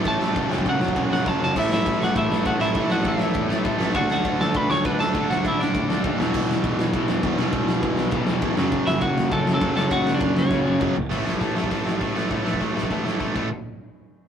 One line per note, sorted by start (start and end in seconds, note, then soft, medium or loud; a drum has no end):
0.05 0.33 A1 medium
0.05 0.19 A2 medium
0.05 0.19 E3 medium
0.05 0.19 A3 loud
0.05 0.54 A5 loud
0.05 kick loud
0.05 crash medium
0.19 0.34 A2 medium
0.19 0.34 E3 medium
0.19 1.57 A3 loud
0.19 snare loud
0.35 0.49 F#1 medium
0.35 0.50 F#2 medium
0.35 0.49 C#3 loud
0.35 0.48 F#3 loud
0.35 kick loud
0.35 crash medium
0.50 0.64 F#1 medium
0.50 0.64 F#2 medium
0.50 0.64 C#3 medium
0.50 0.65 F#3 loud
0.50 snare loud
0.54 0.67 G5 medium
0.58 kick medium
0.65 0.79 C#2 medium
0.65 0.80 F#2 medium
0.65 0.79 C#3 medium
0.65 0.79 F#3 loud
0.65 kick medium
0.65 crash medium
0.69 1.11 F#5 medium
0.79 0.94 F#1 medium
0.79 0.93 F#2 medium
0.79 0.94 C#3 medium
0.79 0.95 F#3 loud
0.79 snare loud
0.88 kick medium
0.95 1.23 E1 loud
0.95 1.11 F#2 loud
0.95 1.10 C#3 loud
0.95 1.09 F#3 loud
0.95 kick loud
0.95 crash medium
1.11 1.23 F#2 medium
1.11 1.23 C#3 medium
1.11 1.24 F#3 medium
1.11 1.28 F#5 loud
1.11 snare loud
1.24 1.39 F#1 loud
1.24 1.40 F#2 medium
1.24 1.39 C#3 medium
1.24 1.39 F#3 medium
1.24 1.41 A5 medium
1.24 kick loud
1.24 snare medium
1.40 1.54 F#1 loud
1.40 1.55 F#2 medium
1.40 1.54 C#3 medium
1.40 1.54 F#3 medium
1.40 snare medium
1.44 1.57 A5 loud
1.55 1.69 A1 medium
1.55 2.29 A2 medium
1.55 2.30 E3 medium
1.55 2.29 A3 loud
1.55 1.71 E4 medium
1.55 kick loud
1.55 crash loud
1.59 1.73 E5 medium
1.69 1.84 A1 medium
1.69 1.99 E4 medium
1.69 snare loud
1.74 2.03 E5 medium
1.86 1.99 A1 medium
1.86 kick loud
1.86 ride medium
2.00 2.14 A1 medium
2.00 2.43 A2 medium
2.00 2.45 E3 medium
2.00 2.48 A3 medium
2.00 2.16 F#4 medium
2.00 snare loud
2.04 2.16 F#5 medium
2.16 2.29 A1 medium
2.16 2.44 E4 medium
2.16 2.45 E5 medium
2.16 kick loud
2.16 ride medium
2.30 2.44 A1 medium
2.30 2.44 A2 medium
2.30 2.45 E3 medium
2.30 2.48 A3 medium
2.30 snare loud
2.45 2.59 A1 medium
2.45 2.73 A2 medium
2.45 2.75 E3 medium
2.45 2.77 A3 loud
2.45 2.60 F#4 medium
2.45 2.60 F#5 medium
2.45 kick loud
2.45 ride medium
2.60 2.74 A1 medium
2.60 2.73 A2 medium
2.60 2.75 E3 medium
2.60 2.77 A3 medium
2.60 2.88 E4 medium
2.60 2.92 E5 loud
2.60 snare loud
2.75 2.89 A1 loud
2.75 3.49 A2 loud
2.75 3.49 E3 loud
2.75 3.48 A3 loud
2.75 kick loud
2.75 ride medium
2.90 3.04 A1 medium
2.90 3.05 F#4 medium
2.90 3.06 F#5 medium
2.90 snare loud
3.04 3.18 A1 loud
3.04 3.77 E4 medium
3.04 kick loud
3.04 ride medium
3.08 3.77 E5 medium
3.19 3.34 E2 medium
3.19 3.64 E3 medium
3.19 3.67 A3 medium
3.19 snare loud
3.23 3.63 A2 medium
3.34 3.49 E2 loud
3.34 kick loud
3.34 ride medium
3.49 3.64 A1 medium
3.49 3.63 A2 medium
3.49 3.64 E3 medium
3.49 3.66 A3 medium
3.49 snare loud
3.64 3.79 A1 loud
3.64 3.94 A2 medium
3.64 3.94 E3 medium
3.64 3.96 A3 medium
3.64 kick loud
3.64 ride medium
3.78 3.94 A1 loud
3.78 3.93 A2 medium
3.78 3.94 E3 medium
3.78 3.96 A3 medium
3.78 snare loud
3.94 4.08 D2 loud
3.94 4.68 D3 medium
3.94 4.69 A3 loud
3.94 4.68 D4 loud
3.94 4.09 F#4 medium
3.94 4.11 F#5 medium
3.94 kick loud
3.94 ride medium
4.09 4.23 D2 medium
4.09 4.39 F#4 medium
4.09 4.42 F#5 loud
4.09 snare loud
4.25 4.38 D2 loud
4.25 kick loud
4.25 ride medium
4.39 4.54 D2 medium
4.39 4.85 A3 medium
4.39 4.84 D4 medium
4.39 4.55 A4 medium
4.39 4.56 A5 loud
4.39 snare loud
4.43 4.83 D3 medium
4.54 4.68 D2 loud
4.54 4.70 B4 medium
4.54 4.70 B5 loud
4.54 kick loud
4.54 ride medium
4.69 4.83 D2 medium
4.69 4.84 D3 medium
4.69 4.84 A3 medium
4.69 4.84 D4 medium
4.69 4.84 C#5 medium
4.69 4.85 C#6 loud
4.69 snare loud
4.85 4.99 D2 loud
4.85 5.14 D3 medium
4.85 5.15 A3 medium
4.85 5.15 D4 loud
4.85 4.99 B4 medium
4.85 5.00 B5 loud
4.85 kick loud
4.85 ride medium
4.99 5.13 D2 medium
4.99 5.12 D3 medium
4.99 5.13 A3 medium
4.99 5.13 D4 medium
4.99 5.28 A4 medium
4.99 5.31 A5 loud
4.99 snare loud
5.15 5.28 D2 loud
5.15 5.89 D3 medium
5.15 5.89 A3 medium
5.15 5.88 D4 loud
5.15 kick loud
5.15 ride medium
5.29 5.43 D2 medium
5.29 5.44 F#4 medium
5.29 5.46 F#5 medium
5.29 snare loud
5.45 5.58 D2 loud
5.45 5.60 E4 medium
5.45 5.59 E5 medium
5.45 kick loud
5.45 ride medium
5.58 5.73 A2 medium
5.58 6.03 A3 medium
5.58 6.03 D4 loud
5.58 6.02 D4 medium
5.58 6.04 D5 medium
5.58 snare loud
5.63 6.01 D3 medium
5.74 5.88 A2 medium
5.74 kick loud
5.74 ride medium
5.88 6.02 D2 medium
5.88 6.02 D3 medium
5.88 6.04 A3 medium
5.88 6.03 D4 medium
5.88 snare loud
6.03 6.18 D#2 loud
6.03 6.18 D3 medium
6.03 6.19 A3 medium
6.03 6.20 D4 medium
6.03 kick loud
6.03 ride medium
6.18 6.33 E1 medium
6.18 6.93 E2 loud
6.18 6.93 B2 medium
6.18 6.94 E3 loud
6.18 snare loud
6.34 6.47 E1 medium
6.34 kick loud
6.34 crash loud
6.48 6.62 E1 medium
6.48 snare loud
6.62 6.77 E1 medium
6.62 7.07 E2 medium
6.62 7.08 B2 medium
6.62 7.06 E3 medium
6.62 kick loud
6.62 ride medium
6.77 6.92 E1 medium
6.77 snare loud
6.94 7.08 E1 loud
6.94 7.08 E2 medium
6.94 7.08 B2 medium
6.94 7.06 E3 medium
6.94 kick loud
6.94 ride medium
7.08 7.22 E1 medium
7.08 7.36 E2 medium
7.08 7.38 B2 medium
7.08 7.37 E3 medium
7.08 snare loud
7.23 7.37 E1 loud
7.23 7.36 E2 medium
7.23 7.37 B2 loud
7.23 7.39 E3 loud
7.23 kick loud
7.23 ride medium
7.37 7.52 E1 medium
7.37 8.10 E2 loud
7.37 8.12 B2 loud
7.37 8.13 E3 loud
7.37 snare loud
7.52 7.66 E1 loud
7.52 kick loud
7.52 ride medium
7.67 7.81 E1 medium
7.67 snare loud
7.81 7.97 E1 loud
7.81 8.26 E2 medium
7.81 8.27 B2 medium
7.81 8.25 E3 medium
7.81 kick loud
7.81 ride medium
7.97 8.12 B1 medium
7.97 snare loud
8.11 8.26 B1 loud
8.11 8.26 E2 medium
8.11 8.26 B2 medium
8.11 8.25 E3 loud
8.11 kick loud
8.11 ride medium
8.26 8.42 E1 medium
8.26 8.56 E2 medium
8.26 8.57 B2 medium
8.26 8.56 E3 medium
8.26 snare loud
8.42 8.56 E1 loud
8.42 8.56 E2 medium
8.42 8.57 B2 loud
8.42 8.58 E3 loud
8.42 kick loud
8.42 ride medium
8.56 8.71 F#1 loud
8.56 9.29 F#2 medium
8.56 9.30 C#3 loud
8.56 9.32 F#3 loud
8.56 snare loud
8.72 8.86 F#1 loud
8.72 kick loud
8.72 ride medium
8.87 9.01 F#1 medium
8.87 9.01 E4 medium
8.87 9.01 E5 medium
8.87 snare loud
9.00 9.16 F#1 loud
9.00 9.45 F#2 medium
9.00 9.46 C#3 medium
9.00 9.44 F#3 medium
9.00 9.30 F#4 medium
9.00 9.33 F#5 medium
9.00 kick loud
9.00 ride medium
9.17 9.31 F#1 medium
9.17 snare loud
9.30 9.46 F#1 medium
9.30 9.45 F#2 medium
9.30 9.46 C#3 medium
9.30 9.44 F#3 medium
9.30 9.53 A4 medium
9.30 9.53 A5 loud
9.30 kick loud
9.30 ride medium
9.45 9.60 F#1 medium
9.45 9.73 F#2 medium
9.45 9.75 C#3 medium
9.45 9.75 F#3 medium
9.45 snare loud
9.54 9.75 A4 medium
9.54 9.75 A5 medium
9.60 9.75 F#1 loud
9.60 9.74 F#2 medium
9.60 9.76 C#3 medium
9.60 9.76 F#3 loud
9.60 kick loud
9.60 ride medium
9.74 9.90 F#1 loud
9.74 10.49 F#2 medium
9.74 10.50 C#3 loud
9.74 10.51 F#3 loud
9.74 9.91 A4 medium
9.74 9.92 A5 loud
9.74 snare loud
9.91 10.05 F#1 loud
9.91 10.13 F#4 medium
9.91 10.15 F#5 loud
9.91 kick loud
9.91 ride medium
10.07 10.21 F#1 medium
10.07 snare loud
10.14 10.35 D4 medium
10.14 10.37 D5 loud
10.19 10.35 F#1 loud
10.19 10.64 F#2 medium
10.19 10.65 C#3 medium
10.19 10.63 F#3 medium
10.19 kick loud
10.19 ride medium
10.36 10.50 C#2 medium
10.36 10.93 C#4 medium
10.36 10.93 C#5 medium
10.36 snare loud
10.50 10.65 C#2 medium
10.50 10.65 F#2 medium
10.50 10.65 C#3 medium
10.50 10.64 F#3 medium
10.50 kick loud
10.50 snare medium
10.65 10.79 F#1 medium
10.65 10.96 F#2 medium
10.65 10.95 C#3 medium
10.65 10.95 F#3 medium
10.79 10.95 F#1 medium
10.79 10.94 F#2 medium
10.79 10.95 C#3 medium
10.79 10.96 F#3 medium
10.79 kick loud
10.79 mid tom loud
10.96 11.10 F#1 medium
10.96 floor tom loud
11.11 11.24 A1 medium
11.11 11.27 A2 medium
11.11 11.26 E3 medium
11.11 11.25 A3 medium
11.11 kick loud
11.11 crash loud
11.26 11.39 A1 medium
11.26 11.40 A2 medium
11.26 11.41 E3 medium
11.26 11.41 A3 medium
11.26 snare loud
11.34 kick medium
11.41 11.54 A1 medium
11.41 11.57 A2 medium
11.41 11.56 E3 medium
11.41 11.55 A3 medium
11.41 kick medium
11.41 open hi-hat medium
11.56 11.69 A1 medium
11.56 11.69 A2 medium
11.56 11.70 E3 loud
11.56 11.70 A3 loud
11.56 snare loud
11.64 kick medium
11.70 11.84 A1 medium
11.70 11.85 A2 medium
11.70 11.85 E3 medium
11.70 11.84 A3 medium
11.70 kick medium
11.70 open hi-hat medium
11.85 11.99 A1 medium
11.85 12.00 A2 medium
11.85 12.00 E3 medium
11.85 12.00 A3 loud
11.85 snare loud
12.00 12.26 A1 medium
12.00 12.14 A2 medium
12.00 12.14 E3 medium
12.00 12.14 A3 medium
12.00 kick loud
12.00 open hi-hat medium
12.14 12.29 A2 medium
12.14 12.29 E3 medium
12.14 12.29 A3 medium
12.14 snare loud
12.30 12.56 A1 medium
12.30 12.44 A2 medium
12.30 12.44 E3 medium
12.30 12.43 A3 loud
12.30 kick loud
12.30 open hi-hat soft
12.45 12.59 A2 medium
12.45 12.59 E3 medium
12.45 12.60 A3 medium
12.45 snare loud
12.54 kick medium
12.60 12.74 A1 medium
12.60 12.74 A2 medium
12.60 12.73 E3 medium
12.60 12.73 A3 medium
12.60 kick medium
12.60 open hi-hat soft
12.74 12.89 A1 medium
12.74 12.89 A2 medium
12.74 12.89 E3 loud
12.74 12.90 A3 medium
12.74 snare loud
12.83 kick medium
12.90 13.16 A1 medium
12.90 13.04 A2 medium
12.90 13.04 E3 medium
12.90 13.03 A3 medium
12.90 kick medium
12.90 open hi-hat medium
13.04 13.18 A2 medium
13.04 13.19 E3 medium
13.04 13.19 A3 medium
13.04 snare medium
13.20 13.33 A1 medium
13.20 13.33 A2 medium
13.20 13.33 E3 medium
13.20 13.34 A3 medium
13.20 kick loud
13.20 snare medium
13.34 13.50 A1 medium
13.34 13.47 A2 medium
13.34 13.47 E3 medium
13.34 13.47 A3 medium
13.34 kick medium
13.34 crash medium